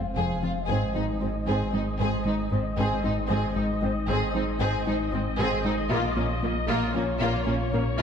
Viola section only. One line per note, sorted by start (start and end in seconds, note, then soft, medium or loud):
0.17 0.41 C4 soft
0.43 0.51 C4 soft
0.69 0.93 C4 medium
0.95 1.03 C4 soft
1.21 1.29 C4 soft
1.47 1.72 C4 soft
1.73 1.81 C4 soft
1.99 2.24 C4 soft
2.26 2.34 C4 soft
2.51 2.59 C4 soft
2.77 3.02 C4 medium
3.04 3.12 C4 soft
3.30 3.54 C4 medium
3.56 3.64 C4 soft
3.82 3.90 C4 soft
4.08 4.32 C4 medium
4.35 4.43 C4 soft
4.61 4.85 C4 soft
4.86 4.94 C4 soft
5.13 5.21 C4 medium
5.39 5.63 C4 medium
5.65 5.73 C4 soft
5.91 6.15 A#3 medium
6.17 6.25 A#3 soft
6.43 6.51 A#3 soft
6.69 6.93 A#3 medium
6.95 7.03 A#3 soft
7.21 7.46 A#3 medium
7.48 7.56 A#3 soft
7.74 7.82 A#3 medium